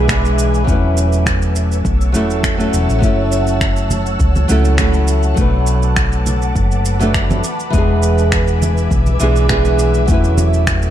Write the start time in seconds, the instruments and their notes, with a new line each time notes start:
Already playing: fingered electric bass B1, ambient pad B4 E5 G#5 D6
0.08 nylon-string guitar E3 G#3 B3 D4 G#4, finger snap, kick, shaker
0.25 shaker
0.39 shaker
0.54 shaker
0.64 fingered electric bass E1, nylon-string guitar F#3 A3 C#4, ambient pad C#5 F#5 A5 E6, kick
0.68 nylon-string guitar E4 B4, shaker
0.97 shaker
1.13 shaker
1.26 finger snap, kick, shaker
1.42 shaker
1.56 shaker
1.72 shaker
1.85 fingered electric bass B1, kick, shaker
2.01 shaker
2.12 fingered electric bass E1, nylon-string guitar F#3 A3 C#4 E4 A4, shaker
2.30 shaker
2.43 finger snap, kick, shaker
2.57 nylon-string guitar F#3 A3 C#4 E4 A4, shaker
2.74 fingered electric bass E1, shaker
2.89 fingered electric bass A1, shaker
2.98 fingered electric bass F#1, nylon-string guitar F#3 A3 C#4, kick
3.03 nylon-string guitar E4 A4, shaker
3.32 shaker
3.47 shaker
3.61 finger snap, kick, shaker
3.77 shaker
3.91 high conga, low conga, shaker
4.06 shaker
4.20 fingered electric bass C#2, kick, shaker
4.35 high conga, shaker
4.48 fingered electric bass C#2, nylon-string guitar F#3 A3 C#4 E4 A4, shaker
4.65 shaker
4.77 nylon-string guitar F#3 A3 C#4 E4 A4, finger snap, kick, shaker
4.94 shaker
5.08 shaker
5.23 shaker
5.34 fingered electric bass B1, nylon-string guitar F#3 A3 B3, kick, shaker
5.39 nylon-string guitar D4 B4, ambient pad B4 A5 D6
5.67 shaker
5.83 shaker
5.96 finger snap, kick, shaker
6.12 shaker
6.26 low conga, shaker
6.42 shaker
6.55 fingered electric bass F#1, kick, shaker
6.72 shaker
6.85 shaker
6.99 nylon-string guitar F#3 A3 B3 D4 A4, shaker
7.14 finger snap, kick, shaker
7.30 high conga, shaker
7.44 ambient pad E5 G#5 D6, shaker
7.60 shaker
7.70 fingered electric bass E1, nylon-string guitar E3 G#3 B3, kick, shaker
7.76 nylon-string guitar D4 G#4
8.03 shaker
8.18 shaker
8.32 finger snap, kick, shaker
8.48 shaker
8.62 high conga, low conga, shaker
8.77 shaker
8.91 fingered electric bass B1, kick, shaker
9.06 high conga, shaker
9.20 fingered electric bass B1, nylon-string guitar E3 G#3 B3 D4 G#4, shaker
9.36 shaker
9.48 nylon-string guitar E3 G#3 B3 D4 G#4, finger snap, kick, shaker
9.65 shaker
9.79 shaker
9.94 shaker
10.06 fingered electric bass E1, nylon-string guitar F#3 A3 C#4, ambient pad A4 F#5 C#6, kick, shaker
10.11 nylon-string guitar E4 B4
10.24 shaker
10.38 high conga, shaker
10.54 shaker
10.67 finger snap, kick, shaker
10.82 shaker